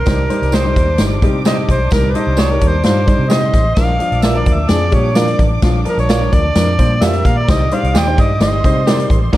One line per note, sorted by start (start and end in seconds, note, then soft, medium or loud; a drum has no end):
0.00 0.57 A#4 medium
0.06 0.27 C2 loud
0.06 0.21 G3 medium
0.06 3.27 D4 medium
0.06 0.21 D#4 medium
0.06 0.21 C5 medium
0.06 3.27 D6 medium
0.06 kick loud
0.06 snare loud
0.06 closed hi-hat medium
0.06 tambourine medium
0.06 muted conga soft
0.06 low conga medium
0.20 high conga medium
0.30 0.51 G3 medium
0.30 0.51 D#4 medium
0.30 0.51 C5 medium
0.30 closed hi-hat medium
0.30 muted conga soft
0.42 0.72 C2 medium
0.42 closed hi-hat soft
0.42 high conga medium
0.52 0.63 G4 medium
0.52 0.63 C5 medium
0.52 1.00 C5 loud
0.52 0.64 D#5 medium
0.52 snare loud
0.52 closed hi-hat medium
0.52 tambourine medium
0.52 muted conga soft
0.64 0.86 G3 medium
0.64 0.86 D#4 medium
0.64 0.86 C5 medium
0.64 high conga medium
0.76 0.97 D#2 medium
0.76 kick medium
0.76 closed hi-hat medium
0.76 muted conga soft
0.76 high conga soft
0.76 low conga medium
0.98 1.24 G1 medium
0.98 1.14 G3 medium
0.98 1.14 D#4 medium
0.98 1.14 C5 medium
0.98 snare loud
0.98 closed hi-hat medium
0.98 tambourine medium
1.22 1.63 C3 medium
1.22 1.37 G3 medium
1.22 1.37 D#4 medium
1.22 1.37 G4 medium
1.22 kick medium
1.22 closed hi-hat medium
1.22 muted conga soft
1.22 high conga medium
1.45 1.75 G3 medium
1.45 1.75 D#4 medium
1.45 1.56 G4 medium
1.45 1.56 C5 medium
1.45 1.56 D#5 medium
1.45 1.75 D#5 medium
1.45 snare loud
1.45 closed hi-hat medium
1.45 tambourine loud
1.45 muted conga soft
1.45 high conga medium
1.68 1.89 B1 medium
1.68 1.94 C5 medium
1.68 kick medium
1.68 closed hi-hat medium
1.68 muted conga soft
1.68 low conga medium
1.91 2.12 C2 loud
1.91 2.07 G3 medium
1.91 2.07 D#4 medium
1.91 2.12 A#4 medium
1.91 2.07 A#4 medium
1.91 kick loud
1.91 snare medium
1.91 closed hi-hat medium
1.91 tambourine medium
1.91 muted conga soft
1.91 low conga medium
2.06 high conga medium
2.10 2.17 B4 medium
2.15 2.37 G3 medium
2.15 2.37 D#4 medium
2.15 2.40 C5 medium
2.15 2.37 D#5 medium
2.15 closed hi-hat medium
2.15 muted conga soft
2.27 2.57 C2 medium
2.27 high conga medium
2.37 2.48 G4 medium
2.37 2.48 C5 medium
2.37 2.69 C#5 loud
2.37 2.49 D#5 medium
2.37 snare loud
2.37 closed hi-hat medium
2.37 tambourine medium
2.50 2.72 G3 medium
2.50 2.72 D#4 medium
2.50 2.72 A#4 medium
2.50 high conga medium
2.61 2.82 D#2 medium
2.61 kick medium
2.61 closed hi-hat medium
2.61 muted conga soft
2.61 high conga soft
2.61 low conga medium
2.68 2.84 C5 medium
2.84 3.15 G2 medium
2.84 2.98 G3 medium
2.84 2.99 D#4 medium
2.84 2.99 F4 medium
2.84 3.32 C5 medium
2.84 snare loud
2.84 closed hi-hat medium
2.84 tambourine medium
3.07 3.22 G3 medium
3.07 3.22 D#4 medium
3.07 3.22 C5 medium
3.07 kick medium
3.07 closed hi-hat medium
3.07 muted conga soft
3.07 high conga medium
3.19 3.49 C3 medium
3.30 3.59 G3 medium
3.30 3.59 D#4 medium
3.30 3.40 G4 medium
3.30 3.59 C5 medium
3.30 3.76 C5 medium
3.30 3.41 C5 medium
3.30 3.74 D#5 loud
3.30 3.41 D#5 loud
3.30 3.76 C6 medium
3.30 snare loud
3.30 closed hi-hat medium
3.30 tambourine medium
3.30 muted conga soft
3.30 high conga medium
3.53 3.74 A1 medium
3.53 kick medium
3.53 snare soft
3.53 closed hi-hat medium
3.53 low conga medium
3.75 3.97 A#1 loud
3.75 3.91 F3 medium
3.75 3.92 D4 medium
3.75 3.91 A#4 medium
3.75 4.24 F5 loud
3.75 kick loud
3.75 snare loud
3.75 closed hi-hat medium
3.75 tambourine medium
3.75 muted conga soft
3.75 low conga medium
3.79 6.98 D4 medium
3.79 6.98 D6 medium
3.89 high conga medium
3.99 4.21 F3 medium
3.99 4.21 D4 medium
3.99 4.21 F4 medium
3.99 closed hi-hat medium
4.12 4.42 A#1 loud
4.12 closed hi-hat soft
4.12 high conga medium
4.22 4.34 F4 medium
4.22 4.34 A#4 medium
4.22 4.34 D5 medium
4.22 4.40 E5 loud
4.22 snare loud
4.22 closed hi-hat medium
4.22 tambourine medium
4.22 muted conga soft
4.35 4.56 F3 medium
4.35 4.56 D4 medium
4.35 4.57 A#4 medium
4.35 4.55 D5 medium
4.35 high conga medium
4.46 4.67 D2 medium
4.46 kick medium
4.46 closed hi-hat medium
4.46 high conga soft
4.46 low conga medium
4.53 4.71 E5 medium
4.68 4.90 F2 medium
4.68 4.84 F3 medium
4.68 4.84 D4 medium
4.68 4.84 G#4 medium
4.68 4.95 D5 medium
4.68 snare loud
4.68 closed hi-hat loud
4.68 tambourine medium
4.91 5.33 A#2 medium
4.91 5.07 F3 medium
4.91 5.07 D4 medium
4.91 5.07 G4 medium
4.91 5.18 C#5 medium
4.91 kick medium
4.91 closed hi-hat medium
4.91 muted conga soft
4.91 high conga medium
5.15 5.44 F3 medium
5.15 5.45 D4 medium
5.15 5.26 F4 medium
5.15 5.45 A#4 medium
5.15 5.27 A#4 medium
5.15 5.39 D5 medium
5.15 5.27 D5 loud
5.15 snare loud
5.15 closed hi-hat medium
5.15 tambourine loud
5.15 high conga medium
5.28 closed hi-hat medium
5.39 5.59 A1 medium
5.39 kick medium
5.39 closed hi-hat medium
5.39 muted conga soft
5.39 low conga medium
5.62 5.83 A#1 loud
5.62 5.77 F3 medium
5.62 5.77 D4 medium
5.62 5.77 F4 medium
5.62 kick loud
5.62 snare loud
5.62 closed hi-hat medium
5.62 tambourine medium
5.62 low conga medium
5.74 high conga medium
5.85 6.07 F3 medium
5.85 6.07 D4 medium
5.85 6.07 A#4 medium
5.85 5.98 A#4 medium
5.85 closed hi-hat medium
5.85 muted conga soft
5.97 6.28 A#1 medium
5.97 6.35 C#5 medium
5.97 closed hi-hat soft
5.97 high conga medium
6.09 6.19 F4 medium
6.09 6.19 A#4 medium
6.09 6.20 D5 medium
6.09 snare loud
6.09 closed hi-hat medium
6.09 tambourine medium
6.21 6.42 F3 medium
6.21 6.42 D4 medium
6.21 6.42 A#4 medium
6.21 high conga medium
6.32 6.52 D2 medium
6.32 7.05 D5 medium
6.32 kick medium
6.32 closed hi-hat medium
6.32 muted conga soft
6.32 high conga soft
6.32 low conga medium
6.55 6.76 F2 medium
6.55 6.70 F3 medium
6.55 6.70 D4 medium
6.55 6.70 A#4 medium
6.55 snare loud
6.55 closed hi-hat loud
6.55 tambourine medium
6.79 6.99 A#2 medium
6.79 6.93 F3 medium
6.79 6.93 D4 medium
6.79 6.93 C5 medium
6.79 kick medium
6.79 closed hi-hat medium
6.79 muted conga soft
6.79 high conga medium
7.01 7.22 F2 medium
7.01 7.30 F3 medium
7.01 7.30 D4 medium
7.01 7.12 F4 medium
7.01 7.30 G4 medium
7.01 7.47 A#4 medium
7.01 7.12 A#4 medium
7.01 7.13 D5 medium
7.01 7.28 E5 medium
7.01 7.47 A#5 medium
7.01 snare loud
7.01 closed hi-hat medium
7.01 tambourine loud
7.01 high conga medium
7.13 closed hi-hat medium
7.25 7.45 A#2 medium
7.25 7.39 F5 medium
7.25 kick medium
7.25 snare soft
7.25 closed hi-hat medium
7.25 muted conga soft
7.25 low conga medium
7.38 7.48 D5 medium
7.48 7.68 C2 loud
7.48 7.63 G3 medium
7.48 7.63 D#4 medium
7.48 7.63 C5 medium
7.48 8.39 D5 medium
7.48 7.76 D#5 loud
7.48 8.39 D6 medium
7.48 kick loud
7.48 snare loud
7.48 closed hi-hat medium
7.48 tambourine medium
7.48 low conga medium
7.61 high conga medium
7.71 7.93 G3 medium
7.71 7.93 D#4 medium
7.71 7.93 C5 medium
7.71 8.00 F5 loud
7.71 closed hi-hat medium
7.83 7.93 C2 medium
7.83 closed hi-hat soft
7.83 high conga medium
7.94 8.14 D#2 medium
7.94 8.04 G4 medium
7.94 8.05 C5 medium
7.94 8.05 D#5 medium
7.94 snare loud
7.94 closed hi-hat medium
7.94 tambourine medium
7.98 8.22 G5 loud
8.07 8.28 G3 medium
8.07 8.28 D#4 medium
8.07 8.28 C5 medium
8.07 high conga medium
8.18 8.38 G2 medium
8.18 8.41 D#5 loud
8.18 kick loud
8.18 closed hi-hat medium
8.18 high conga soft
8.18 low conga medium
8.40 8.60 G1 loud
8.40 8.55 G3 medium
8.40 8.55 D#4 medium
8.40 9.32 C5 medium
8.40 8.55 D#5 medium
8.40 8.87 D#5 loud
8.40 9.32 C6 medium
8.40 snare loud
8.40 closed hi-hat medium
8.40 tambourine medium
8.64 9.05 C3 medium
8.64 8.78 G3 medium
8.64 8.79 D#4 medium
8.64 8.79 C5 medium
8.64 kick medium
8.64 closed hi-hat medium
8.64 muted conga soft
8.64 high conga medium
8.87 9.16 G3 medium
8.87 9.16 D#4 medium
8.87 8.97 G4 medium
8.87 9.16 A#4 medium
8.87 8.98 C5 medium
8.87 9.07 D5 loud
8.87 8.98 D#5 loud
8.87 snare loud
8.87 closed hi-hat medium
8.87 tambourine medium
8.87 muted conga soft
8.87 high conga medium
8.99 closed hi-hat medium
9.10 9.30 A1 medium
9.10 kick medium
9.10 closed hi-hat medium
9.10 low conga medium
9.33 9.37 A#1 loud
9.33 9.37 F3 loud
9.33 9.37 D4 loud
9.33 9.37 F4 loud
9.33 9.37 A#4 loud
9.33 9.37 D5 loud
9.33 kick medium
9.33 snare loud
9.33 crash medium